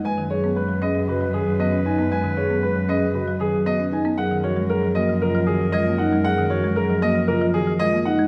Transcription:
<<
  \new Staff \with { instrumentName = "Grand piano" } { \time 4/4 \key fis \major \tempo 4 = 116 gis''16 r16 cis''16 r16 b'16 r16 dis''16 r16 b'16 r16 gis'16 r16 dis''16 r16 gis''16 r16 | gis''16 r16 cis''16 r16 b'16 r16 dis''16 r16 b'16 r16 gis'16 r16 dis''16 r16 gis''16 r16 | fis''16 r16 cis''16 r16 ais'16 r16 dis''16 r16 ais'16 r16 gis'16 r16 dis''16 r16 fis''16 r16 | fis''16 r16 cis''16 r16 ais'16 r16 dis''16 r16 ais'16 r16 gis'16 r16 dis''16 r16 fis''16 r16 | }
  \new Staff \with { instrumentName = "Clarinet" } { \time 4/4 \key fis \major b'1~ | b'2.~ b'8. r16 | ais'1~ | ais'2.~ ais'8. r16 | }
  \new Staff \with { instrumentName = "Vibraphone" } { \time 4/4 \key fis \major b'16 r16 gis'16 r16 b'16 r16 gis'16 r16 fis'16 r16 gis'16 r16 fis'16 r16 dis'16 r16 | b'16 r16 gis'16 r16 b'16 r16 gis'16 r16 fis'16 r16 gis'16 r16 fis'16 r16 dis'16 r16 | gis'16 r16 fis'16 r16 gis'16 r16 fis'16 r16 eis'16 r16 fis'16 r16 eis'16 r16 dis'16 r16 | gis'16 r16 fis'16 r16 gis'16 r16 fis'16 r16 eis'16 r16 fis'16 r16 eis'16 r16 dis'16 r16 | }
  \new Staff \with { instrumentName = "Marimba" } { \clef bass \time 4/4 \key fis \major gis16 dis16 fis16 b16 gis16 fis16 cis'16 fis16 cis16 fis16 dis16 fis16 b16 cis'16 r16 b16 | gis16 dis16 fis16 b16 gis16 fis16 cis'16 fis16 cis16 fis16 dis16 fis16 b16 cis'16 r16 b16 | fis16 dis16 eis16 gis16 fis16 eis16 ais16 eis16 cis16 eis16 dis16 eis16 gis16 ais16 r16 gis16 | fis16 dis16 eis16 gis16 fis16 eis16 ais16 eis16 cis16 eis16 dis16 eis16 gis16 ais16 r16 gis16 | }
  \new Staff \with { instrumentName = "Cello" } { \clef bass \time 4/4 \key fis \major fis,1~ | fis,1 | fis,1~ | fis,1 | }
>>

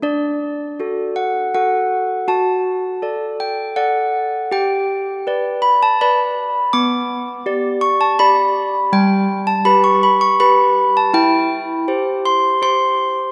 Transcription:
\new Staff \with { instrumentName = "Handbells" } { \time 3/4 \key d \major \tempo 4 = 81 << { d''4. fis''8 fis''4 | a''4. g''8 fis''4 | g''4. b''16 a''16 b''4 | d'''4. cis'''16 a''16 b''4 |
\key g \lydian g''8. a''16 b''16 cis'''16 b''16 cis'''16 b''8. a''16 | g''4. c'''8 c'''4 | } \\ { d'4 <fis' a'>4 <fis' a'>4 | fis'4 <a' d''>4 <a' d''>4 | g'4 <b' d''>4 <b' d''>4 | b4 <g' d''>4 <g' d''>4 |
g4 <g' b'>4 <g' b'>4 | e'4 <g' c''>4 <g' c''>4 | } >> }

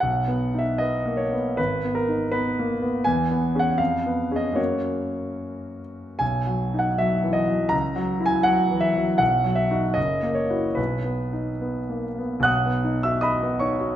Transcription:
<<
  \new Staff \with { instrumentName = "Grand piano" } { \time 2/4 \key b \major \tempo 4 = 78 fis''8. e''16 dis''8 cis''8 | b'8 ais'8 b'4 | gis''8. fis''16 eis''8. dis''16 | cis''4. r8 |
gis''8. fis''16 e''8 dis''8 | ais''8. gis''16 fis''8 e''8 | fis''8 e''8 dis''8 cis''8 | b'4. r8 |
<fis'' dis''' fis'''>8. <e'' e'''>16 <dis'' b'' dis'''>8 <cis'' cis'''>8 | }
  \new Staff \with { instrumentName = "Grand piano" } { \time 2/4 \key b \major \tuplet 3/2 { b,,8 b8 dis'8 b8 ais8 b8 } | \tuplet 3/2 { gis,,8 b8 dis'8 b8 ais8 b8 } | \tuplet 3/2 { e,8 b8 <cis' gis'>8 eis,8 b8 <cis' gis'>8 } | <fis, ais cis' fis'>2 |
\tuplet 3/2 { b,,8 fis8 dis'8 fis8 e8 fis8 } | \tuplet 3/2 { cis,8 fis8 e'8 fis8 e8 fis8 } | \tuplet 3/2 { b,,8 fis8 <dis' fis'>8 fis,,8 ais8 <e' fis'>8 } | \tuplet 3/2 { b,,8 b8 dis'8 b8 ais8 b8 } |
b,,16 b16 dis'16 fis'8 b16 dis'16 fis'16 | }
>>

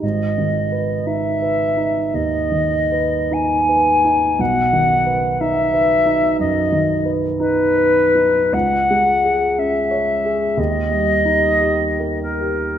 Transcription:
<<
  \new Staff \with { instrumentName = "Flute" } { \time 4/4 \key gis \minor \tempo 4 = 57 dis''4 e''4 dis''4 gis''4 | fis''4 e''4 dis''8. r16 b'4 | fis''4 e''4 dis''4. ais'8 | }
  \new Staff \with { instrumentName = "Grand piano" } { \time 4/4 \key gis \minor \tuplet 3/2 { gis,,8 dis8 b'8 dis'8 b'8 dis'8 dis,8 dis8 b'8 dis'8 b'8 dis'8 } | \tuplet 3/2 { b,,8 dis8 b'8 dis'8 b'8 dis'8 fis,8 dis8 b'8 dis'8 b'8 dis'8 } | \tuplet 3/2 { cis,8 gis8 gis'8 cis'8 cis''8 gis'8 dis,8 g8 dis'8 g'8 ais'8 g'8 } | }
>>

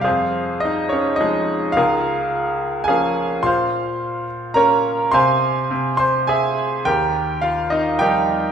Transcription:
<<
  \new Staff \with { instrumentName = "Grand piano" } { \time 3/4 \key f \minor \tempo 4 = 106 <f' aes' c'' f''>4 <ees' ees''>8 <des' des''>8 <ees' aes' ees''>4 | <f' aes' bes' f''>2 <aes' f'' aes''>8. r16 | <c'' f'' c'''>4. r8 <bes' des'' bes''>4 | <c'' f'' aes'' c'''>4. <c'' c'''>8 <aes' e'' aes''>4 |
<g' bes' g''>4 <f' f''>8 <ees' ees''>8 <g' bes' g''>4 | }
  \new Staff \with { instrumentName = "Grand piano" } { \clef bass \time 3/4 \key f \minor f,2 <f aes>4 | des,2 <f bes des'>4 | bes,2 <bes des'>4 | c4 c2 |
ees,2 <f g ees'>4 | }
>>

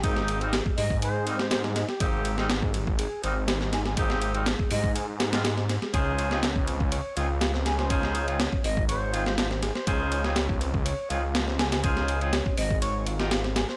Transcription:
<<
  \new Staff \with { instrumentName = "Flute" } { \time 4/4 \key des \lydian \tempo 4 = 122 r4. ees''8 c''8. c''16 c''16 r8. | r2. r8 aes''16 aes''16 | r4. ees''8 r2 | r2. r8 aes''16 aes''16 |
r4. ees''8 c''8. c''16 c''16 r8. | r2. r8 aes''16 aes''16 | r4. ees''8 r2 | }
  \new Staff \with { instrumentName = "Horn section" } { \time 4/4 \key des \lydian <bes c' ees' g'>8. <g bes c' ees'>16 r4. <g bes c' ees'>16 r4 r16 | <bes c' ees' g'>8. <g bes c' ees'>16 r4. <g bes c' ees'>16 r4 r16 | <bes c' ees' g'>8. <g bes c' ees'>16 r4. r16 <g bes c' f'>16 r4 | <ees' f' aes' c''>8. <c' ees' f' aes'>16 r4. <c' ees' f' aes'>16 r4 r16 |
<ees' f' aes' c''>8. <c' ees' f' aes'>16 r4. <c' ees' f' aes'>16 r4 r16 | <ees' f' aes' c''>8. <c' ees' f' aes'>16 r4. <c' ees' f' aes'>16 r4 r16 | <ees' f' aes' c''>8. <c' ees' f' aes'>16 r4. r16 <c' ees' f' bes'>16 r4 | }
  \new Staff \with { instrumentName = "Tonewheel organ" } { \time 4/4 \key des \lydian aes8. aes8. g16 r16 aes'8 c'8. g16 ees'16 g'16 | aes8. aes8. g16 r16 aes'8 c'8. g16 ees'16 g'16 | aes8. aes8. g16 r16 aes'16 r16 aes16 g16 aes16 c'16 c'16 aes16 | des'8. des'8. c'16 r16 des''8 f'8. c'16 aes'16 c''16 |
des'8. des'8. c'16 r16 des''8 f'8. c'16 aes'16 c''16 | des'8. des'8. c'16 r16 des''8 f'8. c'16 aes'16 c''16 | des'8. des'8. c'16 r16 des''8 f'8. c'16 aes'16 c''16 | }
  \new Staff \with { instrumentName = "Detuned saw bass" } { \clef bass \time 4/4 \key des \lydian aes,,4 r8 aes,2 r8 | aes,,2 r8 aes,,4.~ | aes,,4 r8 aes,2 r8 | des,2 r8 des,4.~ |
des,4 r8 aes,,2 r8 | des,2 r8 des,4.~ | des,4 r8 aes,,2 r8 | }
  \new DrumStaff \with { instrumentName = "Drums" } \drummode { \time 4/4 <bd cymr>16 sn16 cymr16 cymr16 <cymr sn>16 bd16 hho16 bd16 cymr8 cymr16 sn16 <cymr sn>16 sn16 <cymr sn>16 sn16 | <bd cymr>8 cymr16 sn16 <cymr sn>16 bd16 cymr16 bd16 cymr8 cymr8 <cymr sn>16 sn16 <cymr sn>16 sn16 | <bd cymr>16 sn16 cymr16 cymr16 <cymr sn>16 bd16 hho16 bd16 cymr8 <cymr sn>16 <cymr sn>16 <cymr sn>16 sn16 <cymr sn>16 sn16 | <bd cymr>8 cymr16 sn16 <cymr sn>16 bd16 cymr16 bd16 cymr8 cymr8 <cymr sn>16 sn16 <cymr sn>16 sn16 |
<bd cymr>16 sn16 cymr16 cymr16 <cymr sn>16 bd16 hho16 bd16 cymr8 cymr16 sn16 <cymr sn>16 sn16 <cymr sn>16 sn16 | <bd cymr>8 cymr16 sn16 <cymr sn>16 bd16 cymr16 bd16 cymr8 cymr8 <cymr sn>16 sn16 <cymr sn>16 <cymr sn>16 | <bd cymr>16 sn16 cymr16 cymr16 <cymr sn>16 bd16 hho16 bd16 cymr8 cymr16 sn16 <cymr sn>16 sn16 <cymr sn>16 sn16 | }
>>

